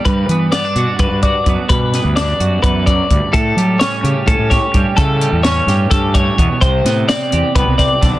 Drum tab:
HH |xxxxxxx|xxxxxxx|xxxxxxx|xxxxxxx|
SD |--o----|-oo----|--o--o-|--oo---|
BD |o---ooo|o---ooo|o---ooo|o---ooo|

HH |xxxxxxx|
SD |-oo--oo|
BD |o---ooo|